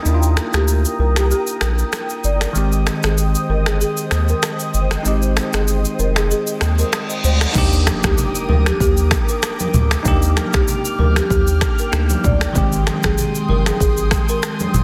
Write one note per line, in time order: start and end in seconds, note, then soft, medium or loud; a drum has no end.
0.00 2.50 D#4 medium
0.00 2.51 A#4 medium
0.00 7.51 G5 medium
0.00 2.51 A#5 medium
0.00 7.51 D#6 medium
0.05 0.39 D#2 loud
0.05 2.51 A#3 medium
0.05 2.52 D4 medium
0.05 0.14 E4 medium
0.05 shaker medium
0.14 2.56 F4 medium
0.23 shaker soft
0.37 finger snap medium
0.37 cross-stick medium
0.37 shaker medium
0.53 0.85 D2 medium
0.53 0.66 G4 medium
0.53 finger snap medium
0.53 cross-stick medium
0.53 shaker soft
0.68 shaker medium
0.85 shaker medium
0.99 1.33 C2 loud
0.99 1.14 A#4 medium
1.16 1.29 G4 medium
1.16 finger snap medium
1.16 cross-stick medium
1.16 shaker medium
1.31 1.45 G4 medium
1.31 shaker medium
1.47 shaker medium
1.61 1.83 A#1 medium
1.61 finger snap medium
1.61 cross-stick medium
1.61 shaker medium
1.78 1.91 A#4 medium
1.78 shaker soft
1.93 finger snap medium
1.93 cross-stick loud
1.93 shaker medium
2.09 shaker soft
2.24 2.46 G1 medium
2.24 2.39 D5 medium
2.24 shaker medium
2.41 finger snap medium
2.41 cross-stick medium
2.41 shaker medium
2.53 2.89 G#1 loud
2.53 5.00 D#3 medium
2.53 5.01 G#3 medium
2.53 5.02 C4 medium
2.53 7.51 C5 medium
2.53 7.51 D#5 medium
2.53 shaker medium
2.58 5.03 G4 medium
2.72 shaker soft
2.87 finger snap medium
2.87 cross-stick medium
2.87 shaker medium
3.03 3.35 G#1 medium
3.03 3.16 G#4 medium
3.03 finger snap medium
3.03 cross-stick medium
3.03 shaker soft
3.18 shaker medium
3.35 shaker medium
3.49 3.83 G1 medium
3.49 3.64 A#4 medium
3.66 3.79 G#4 medium
3.66 finger snap medium
3.66 cross-stick medium
3.66 shaker medium
3.81 3.95 G#4 medium
3.81 shaker medium
3.97 shaker medium
4.11 4.33 D#2 medium
4.11 finger snap medium
4.11 cross-stick medium
4.11 shaker medium
4.28 4.41 A#4 medium
4.28 shaker soft
4.43 finger snap medium
4.43 cross-stick loud
4.43 shaker medium
4.59 shaker soft
4.74 4.96 G1 loud
4.74 shaker medium
4.91 finger snap medium
4.91 cross-stick medium
4.91 shaker medium
5.03 5.39 G#1 loud
5.03 7.51 G#3 medium
5.03 7.52 C4 medium
5.03 7.50 D#4 medium
5.03 shaker medium
5.08 7.53 G4 medium
5.22 shaker soft
5.37 finger snap medium
5.37 cross-stick medium
5.37 shaker medium
5.53 5.85 G1 medium
5.53 5.66 G#4 medium
5.53 finger snap medium
5.53 cross-stick medium
5.53 shaker soft
5.68 shaker medium
5.85 shaker medium
5.99 6.33 F1 medium
5.99 6.14 A#4 medium
5.99 shaker soft
6.16 6.29 G#4 medium
6.16 finger snap medium
6.16 cross-stick medium
6.16 shaker medium
6.30 6.45 G#4 medium
6.30 reverse cymbal medium
6.30 shaker medium
6.47 shaker medium
6.61 6.83 D#2 medium
6.61 finger snap medium
6.61 cross-stick medium
6.61 shaker medium
6.78 6.91 A#4 medium
6.78 shaker soft
6.93 finger snap medium
6.93 cross-stick loud
6.93 shaker medium
7.10 shaker medium
7.24 7.46 D2 medium
7.24 7.39 C5 medium
7.24 shaker medium
7.41 finger snap medium
7.41 cross-stick medium
7.41 shaker medium
7.53 7.89 D#2 loud
7.53 10.01 A#3 medium
7.53 10.02 D4 medium
7.53 10.00 D#4 medium
7.53 12.51 A#4 medium
7.53 14.84 G5 medium
7.53 12.51 D6 medium
7.53 10.03 D#6 medium
7.53 kick loud
7.53 crash medium
7.53 impact medium
7.53 low conga medium
7.53 shaker medium
7.58 10.03 G4 medium
7.72 shaker medium
7.87 finger snap medium
7.87 cross-stick loud
7.87 high conga medium
7.87 shaker medium
8.03 8.14 D2 medium
8.03 8.16 G4 medium
8.03 finger snap medium
8.03 kick medium
8.03 cross-stick medium
8.03 shaker medium
8.18 low conga medium
8.18 shaker medium
8.35 shaker medium
8.49 8.71 D2 medium
8.49 8.64 A#4 medium
8.49 high conga medium
8.49 low conga medium
8.66 8.79 G4 medium
8.66 finger snap medium
8.66 cross-stick medium
8.66 high conga medium
8.66 shaker medium
8.80 9.14 D#2 loud
8.80 8.96 G4 medium
8.80 kick loud
8.80 shaker medium
8.97 shaker medium
9.11 finger snap medium
9.11 kick medium
9.11 cross-stick loud
9.11 shaker medium
9.28 9.41 A#4 medium
9.28 shaker soft
9.43 finger snap medium
9.43 cross-stick loud
9.43 shaker medium
9.59 high conga medium
9.59 shaker medium
9.74 9.96 D2 medium
9.74 mid tom medium
9.74 high conga medium
9.74 low conga medium
9.74 shaker medium
9.91 finger snap medium
9.91 cross-stick medium
9.91 shaker medium
10.03 10.39 D#2 loud
10.03 11.89 A#3 medium
10.03 11.89 D4 medium
10.03 11.88 D#4 medium
10.03 12.53 F6 medium
10.03 kick loud
10.03 low conga medium
10.03 shaker medium
10.08 11.90 G4 medium
10.22 shaker medium
10.37 finger snap medium
10.37 cross-stick medium
10.37 high conga medium
10.37 shaker medium
10.53 10.64 C2 medium
10.53 10.66 G4 medium
10.53 finger snap medium
10.53 kick medium
10.53 cross-stick medium
10.53 shaker soft
10.68 low conga medium
10.68 shaker medium
10.85 shaker medium
10.99 11.21 D2 medium
10.99 11.14 A#4 medium
10.99 high conga medium
10.99 low conga medium
11.16 11.28 G4 medium
11.16 finger snap medium
11.16 cross-stick medium
11.16 high conga medium
11.16 shaker medium
11.30 11.64 D#2 loud
11.30 11.45 G4 medium
11.30 kick loud
11.30 shaker medium
11.47 shaker medium
11.61 finger snap medium
11.61 kick medium
11.61 cross-stick loud
11.61 shaker medium
11.79 11.91 A#4 medium
11.79 shaker soft
11.92 12.15 D2 loud
11.92 12.55 A#3 soft
11.92 12.55 D4 soft
11.92 12.55 D#4 soft
11.92 12.56 G4 medium
11.92 finger snap medium
11.92 cross-stick loud
11.92 shaker medium
12.10 high conga medium
12.10 shaker medium
12.24 12.46 D2 medium
12.24 12.39 D5 medium
12.24 kick loud
12.24 mid tom medium
12.24 high conga medium
12.24 low conga medium
12.24 shaker medium
12.41 finger snap medium
12.41 cross-stick medium
12.41 shaker medium
12.53 12.89 G#1 loud
12.53 14.84 D#3 medium
12.53 14.84 G#3 medium
12.53 14.84 C4 medium
12.53 14.84 C6 medium
12.53 14.84 D#6 medium
12.53 kick loud
12.53 low conga medium
12.53 shaker medium
12.58 14.84 G4 medium
12.72 shaker medium
12.87 finger snap medium
12.87 cross-stick loud
12.87 high conga medium
12.87 shaker medium
13.03 13.14 G1 medium
13.03 13.16 G#4 medium
13.03 finger snap medium
13.03 kick medium
13.03 cross-stick medium
13.03 shaker soft
13.18 low conga medium
13.18 shaker medium
13.35 shaker medium
13.48 13.71 G1 loud
13.48 13.64 A#4 medium
13.48 high conga medium
13.48 low conga medium
13.66 13.79 G#4 medium
13.66 finger snap medium
13.66 cross-stick medium
13.66 high conga medium
13.66 shaker medium
13.80 14.14 G#1 loud
13.80 13.95 G#4 medium
13.80 kick loud
13.80 shaker medium
13.97 shaker medium
14.11 finger snap medium
14.11 kick medium
14.11 cross-stick loud
14.11 shaker medium
14.29 14.41 A#4 medium
14.29 shaker soft
14.43 finger snap medium
14.43 cross-stick loud
14.43 shaker medium
14.60 high conga medium
14.60 shaker medium
14.74 14.84 G1 medium
14.74 mid tom medium
14.74 high conga medium
14.74 low conga medium
14.74 shaker medium